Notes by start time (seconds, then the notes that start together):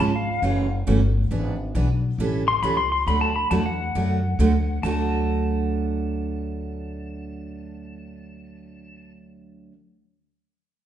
0.00 G#1 C#3 G#3 C#4 F4 G#4 A5
0.16 F5
0.42 F#1 C#3 E3 A3 C#4 F#4
0.87 G1 C#3 E3 A3 C#4 F#4
1.31 G#1 E3 B3 D4 G#4
1.75 B1 E3 B3 D4 G#4
2.18 A1 E3 G3 C#4 E4 A4
2.48 C6
2.62 C#2 E3 G3 C#4 E4 A4 B5
2.77 C6
2.92 C6
3.07 D2 D3 F#3 A3 D4 F#4 B5
3.21 A5
3.36 B5
3.51 E2 D3 F#3 A3 D4 F#4 A5
3.66 F#5
3.95 F#2 D3 F#3 A3 D4 F#4
4.39 D2 D3 F#3 A3 D4 F#4
4.83 D2 D3 F#3 A3 D4 F#4 A5